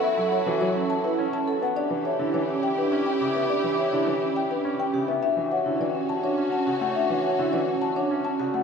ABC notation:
X:1
M:3/4
L:1/16
Q:1/4=104
K:D
V:1 name="Marimba"
e z f z c z a B z a z f | d z e z c z g B z g z e | d z e z c z g B z g z e | e z f z d z a c z a z f |
e z f z d z a c z a z f |]
V:2 name="Alto flute"
A8- A3 z | G12- | G8- G3 z | F12- |
F8- F3 z |]
V:3 name="String section"
[EF]8- [EF]3 z | [EG]12- | [EG]8- [EG]3 z | [CF]12- |
[CF]8- [CF]3 z |]
V:4 name="Vibraphone"
z2 c F z C z E z C A z | D z c E z C z D z C G z | D z c E z C z D z C G z | D z c E z C z D z C F z |
D z c E z C z D z C F z |]
V:5 name="Grand piano" clef=bass
z F, z E, F, z3 C z2 B, | z E, z D, E, z3 C z C, B, | z E, z D, E, z3 C z C, B, | z E, z D, E, z3 C z C, A, |
z E, z D, E, z3 C z C, A, |]